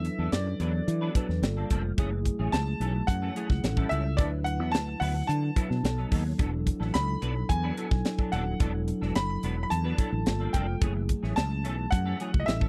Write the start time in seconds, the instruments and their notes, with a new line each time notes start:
Already playing: tine electric piano F#3 D4 E4 A4 B4, grand piano E5
0.05 muted clean electric guitar stroke, closed hi-hat
0.18 fretless electric bass E2, clean electric guitar F#3 B3 D4 A4
0.32 fretless electric bass F#2, grand piano D5, snare, closed hi-hat
0.47 muted clean electric guitar stroke
0.60 fretless electric bass E2, clean electric guitar F#3 B3 D4 B4, closed hi-hat
0.74 muted clean electric guitar stroke
0.87 fretless electric bass E3, muted clean electric guitar stroke, closed hi-hat
1.01 clean electric guitar F#3 B3 D4 B4
1.15 clean electric guitar F#3 B3 D4 A4, tine electric piano F#3 D4 E4 B4, kick, closed hi-hat
1.29 fretless electric bass E2, muted clean electric guitar stroke, snare
1.42 fretless electric bass G1, tine electric piano G3 A#3 F4 A4, muted clean electric guitar stroke, snare, closed hi-hat
1.57 clean electric guitar F3 A#3 D4 A4
1.70 fretless electric bass F1, clean electric guitar F3 A#3 D4 A4, kick, closed hi-hat
1.84 muted clean electric guitar stroke
1.97 fretless electric bass F#1, clean electric guitar E3 A3 C#4 G#4, tine electric piano F#3 A3 E4 G#4, kick, closed hi-hat
2.12 muted clean electric guitar stroke
2.25 muted clean electric guitar stroke, kick, closed hi-hat
2.39 fretless electric bass A1, clean electric guitar E3 A3 C#4 G#4
2.52 fretless electric bass C#2, grand piano A5, snare, closed hi-hat
2.67 muted clean electric guitar stroke
2.80 fretless electric bass B1, clean electric guitar E3 A3 C#4 A4, closed hi-hat
2.95 muted clean electric guitar stroke
3.07 fretless electric bass F#2, grand piano F#5, muted clean electric guitar stroke, kick, closed hi-hat
3.22 clean electric guitar E3 A3 C#4 A4
3.35 clean electric guitar E3 A3 C#4 G#4, tine electric piano F#3 A3 E4 G#4, closed hi-hat
3.50 fretless electric bass C#2, muted clean electric guitar stroke, kick, snare
3.62 fretless electric bass A1, tine electric piano G3 C#4 E4 A4, muted clean electric guitar stroke, snare, closed hi-hat
3.77 clean electric guitar G3 C#4 E4 A4, kick
3.89 fretless electric bass C#2, clean electric guitar G3 C#4 E4 A4, grand piano E5, closed hi-hat
4.05 muted clean electric guitar stroke
4.17 fretless electric bass D2, tine electric piano F#3 D4 E4 B4, clean electric guitar F#3 B3 E4 A4, grand piano D5, kick, closed hi-hat
4.33 muted clean electric guitar stroke
4.44 grand piano F#5, muted clean electric guitar stroke, closed hi-hat
4.60 fretless electric bass E2, clean electric guitar F#3 B3 E4 A4
4.72 fretless electric bass D2, grand piano A5, muted clean electric guitar stroke, snare, closed hi-hat
4.88 muted clean electric guitar stroke
5.00 fretless electric bass D2, clean electric guitar F#3 B3 E4 B4, grand piano F#5, open hi-hat
5.15 muted clean electric guitar stroke
5.27 fretless electric bass D3, grand piano A5, muted clean electric guitar stroke, closed hi-hat
5.43 muted clean electric guitar stroke
5.56 tine electric piano F#3 D4 E4 B4, clean electric guitar F#3 B3 E4 A4, kick, closed hi-hat
5.70 fretless electric bass B2, muted clean electric guitar stroke, snare
5.83 fretless electric bass B1, tine electric piano F#3 B3 D#4 A4, muted clean electric guitar stroke, snare, closed hi-hat
5.98 clean electric guitar F#3 B3 D#4 A4
6.11 fretless electric bass D#2, clean electric guitar F#3 B3 D#4 A4, kick, open hi-hat
6.25 muted clean electric guitar stroke
6.38 fretless electric bass E1, clean electric guitar F#3 B3 D4 A4, tine electric piano F#3 D4 E4 A4, kick, closed hi-hat
6.53 muted clean electric guitar stroke
6.67 muted clean electric guitar stroke, kick, closed hi-hat
6.80 fretless electric bass A1, clean electric guitar F#3 B3 D4 A4, snare
6.94 fretless electric bass C#2, grand piano B5, muted clean electric guitar stroke, snare, closed hi-hat
7.08 muted clean electric guitar stroke
7.22 fretless electric bass B1, clean electric guitar F#3 B3 D4 B4, closed hi-hat
7.36 muted clean electric guitar stroke
7.49 fretless electric bass E2, grand piano G#5, muted clean electric guitar stroke, kick, closed hi-hat
7.63 clean electric guitar F#3 B3 D4 B4
7.77 clean electric guitar F#3 B3 D4 A4, tine electric piano F#3 D4 E4 A4, closed hi-hat
7.91 fretless electric bass B1, muted clean electric guitar stroke, kick, snare
8.04 tine electric piano F#3 D4 E4 A4, muted clean electric guitar stroke, snare, closed hi-hat
8.18 clean electric guitar F#3 B3 D4 A4, kick
8.32 fretless electric bass D#1, clean electric guitar F#3 B3 D4 A4, grand piano F#5, closed hi-hat
8.46 muted clean electric guitar stroke
8.60 fretless electric bass E1, clean electric guitar F#3 B3 D4 A4, tine electric piano F#3 D4 E4 A4, kick, closed hi-hat
8.74 muted clean electric guitar stroke
8.87 muted clean electric guitar stroke, closed hi-hat
9.01 fretless electric bass E1, clean electric guitar F#3 B3 D4 A4, snare
9.15 fretless electric bass F#1, grand piano B5, snare, closed hi-hat
9.29 muted clean electric guitar stroke
9.43 fretless electric bass E1, clean electric guitar F#3 B3 D4 B4, closed hi-hat
9.57 muted clean electric guitar stroke
9.63 grand piano B5
9.70 fretless electric bass E2, grand piano A5, muted clean electric guitar stroke, closed hi-hat
9.84 clean electric guitar F#3 B3 D4 B4
9.98 clean electric guitar F#3 B3 D4 A4, tine electric piano F#3 D4 E4 A4, kick, closed hi-hat
10.12 fretless electric bass A1, muted clean electric guitar stroke
10.26 fretless electric bass G1, tine electric piano G3 A#3 F4 A4, muted clean electric guitar stroke, snare, closed hi-hat
10.40 clean electric guitar F3 A#3 D4 A4
10.53 fretless electric bass F1, clean electric guitar F3 A#3 D4 A4, grand piano G5, kick, closed hi-hat
10.68 muted clean electric guitar stroke
10.81 fretless electric bass F#1, clean electric guitar E3 A3 C#4 G#4, tine electric piano F#3 A3 E4 G#4, kick, closed hi-hat
10.95 muted clean electric guitar stroke
11.09 muted clean electric guitar stroke, kick, closed hi-hat
11.23 fretless electric bass A1, clean electric guitar E3 A3 C#4 G#4, snare
11.36 fretless electric bass C#2, grand piano A5, snare, closed hi-hat
11.50 muted clean electric guitar stroke
11.64 fretless electric bass B1, clean electric guitar E3 A3 C#4 A4, closed hi-hat
11.78 muted clean electric guitar stroke
11.91 fretless electric bass F#2, grand piano F#5, muted clean electric guitar stroke, kick, closed hi-hat
12.06 clean electric guitar E3 A3 C#4 A4
12.19 clean electric guitar E3 A3 C#4 G#4, tine electric piano F#3 A3 E4 F#4, closed hi-hat
12.33 fretless electric bass C#2, muted clean electric guitar stroke, kick
12.40 grand piano D#5
12.46 fretless electric bass A1, tine electric piano G3 C#4 E4 A4, grand piano E5, muted clean electric guitar stroke, snare, closed hi-hat
12.61 clean electric guitar G3 C#4 E4 A4, kick